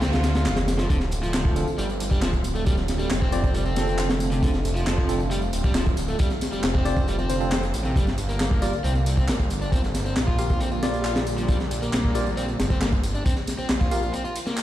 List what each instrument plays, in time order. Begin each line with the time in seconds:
Already playing: analog synth pad D3 G3 A#3 F4, noise sweep
0.01 detuned saw bass D2, overdriven electric guitar C4, snare, closed hi-hat, tambourine
0.12 overdriven electric guitar F4, snare, closed hi-hat, tambourine
0.23 snare, closed hi-hat, ride, tambourine
0.35 snare, closed hi-hat, tambourine
0.45 detuned saw bass F1, snare, clap, closed hi-hat, tambourine
0.56 snare, closed hi-hat, tambourine
0.68 snare, closed hi-hat, ride, tambourine
0.78 overdriven electric guitar F3, snare, closed hi-hat, tambourine
0.90 detuned saw bass D1, overdriven electric guitar D3, analog synth pad A3 C4 F4, kick, closed hi-hat, tambourine
1.00 snare, tambourine
1.11 closed hi-hat, ride, tambourine
1.23 overdriven electric guitar F3, closed hi-hat, tambourine
1.34 snare, clap, closed hi-hat, tambourine
1.45 kick
1.56 tine electric piano C4 D4 F4 A4, closed hi-hat, ride, tambourine
1.68 tambourine
1.78 detuned saw bass G1, overdriven electric guitar G3, closed hi-hat, tambourine
1.89 tambourine
2.00 closed hi-hat, ride, tambourine
2.11 overdriven electric guitar G3, kick, tambourine
2.22 detuned saw bass D1, overdriven electric guitar F3, snare, clap, closed hi-hat, tambourine
2.33 kick, tambourine
2.44 closed hi-hat, ride, tambourine
2.55 overdriven electric guitar A3, tambourine
2.66 overdriven electric guitar G3, kick, closed hi-hat, tambourine
2.77 snare, tambourine
2.88 snare, closed hi-hat, ride, tambourine
2.99 overdriven electric guitar G3, tambourine
3.10 detuned saw bass F1, snare, clap, closed hi-hat, tambourine
3.21 overdriven electric guitar C4, kick
3.32 tine electric piano C4 D4 F4 D5, closed hi-hat, ride, tambourine
3.43 kick, tambourine
3.54 overdriven electric guitar G3, closed hi-hat, tambourine
3.65 overdriven electric guitar C4, tambourine
3.76 tine electric piano C4 D4 F4 A4, snare, closed hi-hat, ride, tambourine
3.87 closed hi-hat, tambourine
3.99 clap, closed hi-hat, tambourine
4.09 snare, closed hi-hat, tambourine
4.20 closed hi-hat, ride, tambourine
4.32 overdriven electric guitar C3, closed hi-hat, tambourine
4.43 overdriven electric guitar D3, kick, closed hi-hat, tambourine
4.54 snare, tambourine
4.65 closed hi-hat, ride, tambourine
4.76 overdriven electric guitar F3, closed hi-hat, tambourine
4.87 detuned saw bass F1, snare, clap, closed hi-hat, tambourine
4.98 kick
5.09 tine electric piano C4 D4 F4 A4, closed hi-hat, ride, tambourine
5.20 tambourine
5.31 overdriven electric guitar G3, closed hi-hat, tambourine
5.42 tambourine
5.53 detuned saw bass D1, closed hi-hat, ride, tambourine
5.64 overdriven electric guitar G3, kick, tambourine
5.75 overdriven electric guitar F3, snare, clap, closed hi-hat, tambourine
5.86 kick, tambourine
5.97 detuned saw bass D1, closed hi-hat, ride, tambourine
6.08 overdriven electric guitar A3, tambourine
6.19 overdriven electric guitar G3, kick, closed hi-hat, tambourine
6.30 snare, tambourine
6.41 snare, closed hi-hat, ride, tambourine
6.52 detuned saw bass F1, overdriven electric guitar G3, tambourine
6.63 detuned saw bass F1, snare, clap, closed hi-hat, tambourine
6.74 overdriven electric guitar C4, kick
6.85 tine electric piano C4 D4 F4 D5, closed hi-hat, ride, tambourine
6.97 kick, tambourine
7.07 overdriven electric guitar G3, closed hi-hat, tambourine
7.19 overdriven electric guitar C4, tambourine
7.29 tine electric piano C4 D4 F4 C5, closed hi-hat, ride, tambourine
7.40 tine electric piano C4 D4 F4 A4, tambourine
7.52 snare, clap, closed hi-hat, tambourine
7.63 closed hi-hat, tambourine
7.74 detuned saw bass A1, closed hi-hat, ride, tambourine
7.85 overdriven electric guitar C3, tambourine
7.96 detuned saw bass G1, analog synth pad D3 G3 A#3, overdriven electric guitar G3, kick, closed hi-hat, tambourine
8.07 snare, tambourine
8.18 closed hi-hat, ride, tambourine
8.29 overdriven electric guitar A#3, closed hi-hat, tambourine
8.40 snare, clap, closed hi-hat, tambourine
8.51 kick
8.62 tine electric piano F4 G4 A#4 D5, closed hi-hat, ride, tambourine
8.73 tambourine
8.84 detuned saw bass C2, overdriven electric guitar C4, closed hi-hat, tambourine
8.95 tambourine
9.06 closed hi-hat, ride, tambourine
9.17 overdriven electric guitar C4, kick, tambourine
9.28 detuned saw bass G1, overdriven electric guitar A#3, snare, clap, closed hi-hat, tambourine
9.39 kick, tambourine
9.50 closed hi-hat, ride, tambourine
9.61 overdriven electric guitar D4, tambourine
9.72 overdriven electric guitar C4, kick, closed hi-hat, tambourine
9.84 snare, tambourine
9.95 snare, closed hi-hat, ride, tambourine
10.05 overdriven electric guitar C4, tambourine
10.17 detuned saw bass A#1, snare, clap, closed hi-hat, tambourine
10.27 overdriven electric guitar F4, kick
10.38 tine electric piano F4 G4 A#4 F5, closed hi-hat, ride, tambourine
10.50 kick, tambourine
10.60 overdriven electric guitar C4, closed hi-hat, tambourine
10.72 overdriven electric guitar F4, tambourine
10.83 tine electric piano F4 G4 A#4 D5, snare, closed hi-hat, ride, tambourine
10.94 closed hi-hat, tambourine
11.05 clap, closed hi-hat, tambourine
11.16 snare, closed hi-hat, tambourine
11.27 closed hi-hat, ride, tambourine
11.38 overdriven electric guitar F3, closed hi-hat, tambourine
11.48 overdriven electric guitar G3, kick, closed hi-hat, tambourine
11.60 snare, tambourine
11.71 closed hi-hat, ride, tambourine
11.82 overdriven electric guitar A#3, closed hi-hat, tambourine
11.93 detuned saw bass A#1, snare, clap, closed hi-hat, tambourine
12.05 kick
12.15 tine electric piano F4 G4 A#4 D5, closed hi-hat, ride, tambourine
12.26 tambourine
12.37 overdriven electric guitar C4, closed hi-hat, tambourine
12.48 tambourine
12.59 detuned saw bass G1, snare, closed hi-hat, ride, tambourine
12.70 overdriven electric guitar C4, kick, tambourine
12.81 overdriven electric guitar A#3, snare, clap, closed hi-hat, tambourine
12.93 kick, tambourine
13.03 detuned saw bass G1, closed hi-hat, ride, tambourine
13.15 overdriven electric guitar D4, tambourine
13.25 overdriven electric guitar C4, kick, closed hi-hat, tambourine
13.36 snare, tambourine
13.47 snare, closed hi-hat, ride, tambourine
13.58 detuned saw bass A#1, overdriven electric guitar C4, tambourine
13.69 detuned saw bass A#1, snare, clap, closed hi-hat, tambourine
13.80 overdriven electric guitar F4, kick, tambourine
13.91 tine electric piano F4 G4 A#4 F5, closed hi-hat, ride, tambourine
14.03 tambourine
14.13 overdriven electric guitar C4, closed hi-hat, tambourine
14.24 overdriven electric guitar F4, tambourine
14.36 closed hi-hat, ride, tambourine
14.47 overdriven electric guitar A#3, snare, tambourine
14.57 clap, closed hi-hat, tambourine